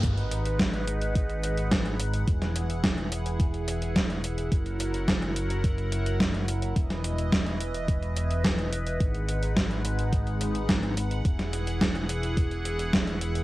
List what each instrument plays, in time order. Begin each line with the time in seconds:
0.03 detuned saw bass G#1, analog synth pad G#3 D#4 B4 F#5, kick, closed hi-hat
0.17 closed hi-hat
0.31 closed hi-hat
0.45 closed hi-hat
0.59 kick, snare, closed hi-hat
0.74 closed hi-hat
0.87 closed hi-hat
1.01 closed hi-hat
1.15 kick, closed hi-hat
1.30 closed hi-hat
1.44 closed hi-hat
1.58 closed hi-hat
1.72 kick, snare, closed hi-hat
1.86 closed hi-hat
2.00 closed hi-hat
2.14 closed hi-hat
2.28 detuned saw bass E1, analog synth pad E3 E4 G#4, kick, closed hi-hat
2.42 snare, closed hi-hat
2.56 closed hi-hat
2.70 closed hi-hat
2.84 kick, snare, closed hi-hat
2.98 closed hi-hat
3.12 closed hi-hat
3.26 closed hi-hat
3.40 kick, closed hi-hat
3.54 closed hi-hat
3.68 closed hi-hat
3.82 closed hi-hat
3.96 kick, snare, closed hi-hat
4.10 closed hi-hat
4.24 closed hi-hat
4.38 closed hi-hat
4.52 detuned saw bass F#1, analog synth pad F#3 A#4 F#5, kick, closed hi-hat
4.66 closed hi-hat
4.80 closed hi-hat
4.94 closed hi-hat
5.08 kick, snare, closed hi-hat
5.22 closed hi-hat
5.36 closed hi-hat
5.50 closed hi-hat
5.64 kick, closed hi-hat
5.78 closed hi-hat
5.92 closed hi-hat
6.06 closed hi-hat
6.20 kick, snare, closed hi-hat
6.34 closed hi-hat
6.48 closed hi-hat
6.62 closed hi-hat
6.76 detuned saw bass E1, analog synth pad E3 B4 D#5, kick, closed hi-hat
6.90 snare, closed hi-hat
7.04 closed hi-hat
7.18 closed hi-hat
7.32 kick, snare, closed hi-hat
7.46 closed hi-hat
7.60 closed hi-hat
7.74 closed hi-hat
7.88 kick, closed hi-hat
8.03 closed hi-hat
8.17 closed hi-hat
8.31 closed hi-hat
8.45 kick, snare, closed hi-hat
8.59 closed hi-hat
8.73 closed hi-hat
8.87 closed hi-hat
9.01 detuned saw bass G#1, analog synth pad G#3 D#4 F#5, kick, closed hi-hat
9.15 closed hi-hat
9.29 closed hi-hat
9.43 closed hi-hat
9.57 kick, snare, closed hi-hat
9.71 closed hi-hat
9.85 closed hi-hat
9.99 closed hi-hat
10.13 kick, closed hi-hat
10.27 closed hi-hat
10.41 closed hi-hat
10.55 closed hi-hat
10.69 kick, snare, closed hi-hat
10.83 closed hi-hat
10.97 closed hi-hat
11.11 closed hi-hat
11.25 detuned saw bass E1, analog synth pad E3 E4 G#4, kick, closed hi-hat
11.39 snare, closed hi-hat
11.53 closed hi-hat
11.67 closed hi-hat
11.81 kick, snare, closed hi-hat
11.95 closed hi-hat
12.09 closed hi-hat
12.23 closed hi-hat
12.37 kick, closed hi-hat
12.51 closed hi-hat
12.65 closed hi-hat
12.79 closed hi-hat
12.93 kick, snare, closed hi-hat
13.07 closed hi-hat
13.21 closed hi-hat
13.35 closed hi-hat